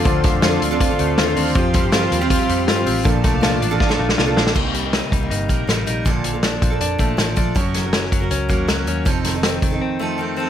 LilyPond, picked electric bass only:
\new Staff \with { instrumentName = "Picked electric bass" } { \clef bass \time 4/4 \key bes \major \tempo 4 = 160 d,8. f,8. d,8. r16 d,8 r8 ees,8 | f,8. g,8. ees,8. r16 f,8 g,8 a,,8 | bes,,8. c,8. a,,8. r16 bes,,8 c,8 bes,,8 | c,4~ c,16 r16 c,8 g,,8 bes,,8 a,,8 bes,,8 |
bes,,4. bes,,8 f,8 bes,,8 a,,8 bes,,8 | ges,,4. ges,,8 des,8 ees,8 des,8 ees,8 | f,,4. f,,8 r2 | }